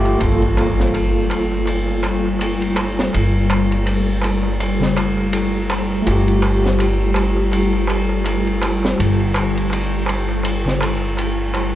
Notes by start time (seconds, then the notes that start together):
Already playing: G1 F3 A3 F4 G4
0.05 ride, darbuka tek
0.17 G3 A#3 A4, ride, impact, darbuka tek
0.21 G1 F4
0.26 A4
0.42 ride
0.57 ride, darbuka tek
0.78 snare, darbuka tek
0.94 ride, darbuka tek
1.30 ride, darbuka tek
1.51 darbuka tek
1.66 ride, darbuka tek
1.87 darbuka tek
2.03 ride, darbuka tek
2.25 darbuka tek
2.39 ride, darbuka tek
2.62 ride
2.76 ride, darbuka tek
2.97 snare, darbuka tek
3.13 G1, ride, darbuka tek
3.50 ride, darbuka tek
3.71 ride, darbuka tek
3.86 ride, darbuka tek
4.22 ride, darbuka tek
4.43 darbuka tek
4.60 ride, darbuka tek
4.80 snare, darbuka tek, darbuka dum
4.97 ride, darbuka tek
5.17 darbuka tek
5.33 ride, darbuka tek
5.70 ride, darbuka tek
5.90 darbuka tek
6.02 A3
6.06 G1 F4, ride, darbuka tek
6.11 G4
6.28 ride
6.42 ride, darbuka tek
6.64 snare, darbuka tek
6.79 ride, darbuka tek
7.14 ride, darbuka tek
7.36 darbuka tek
7.52 ride, darbuka tek
7.73 darbuka tek
7.87 ride, darbuka tek
8.09 darbuka tek
8.24 ride, darbuka tek
8.47 ride
8.62 ride, darbuka tek
8.83 snare, darbuka tek
8.98 G1, ride, darbuka tek
9.34 ride, darbuka tek
9.56 ride, darbuka tek
9.70 ride, darbuka tek
10.06 ride, darbuka tek
10.29 darbuka tek
10.43 ride, darbuka tek
10.64 snare, darbuka tek, darbuka dum
10.81 ride, darbuka tek
11.02 darbuka tek
11.17 ride, darbuka tek
11.54 ride, darbuka tek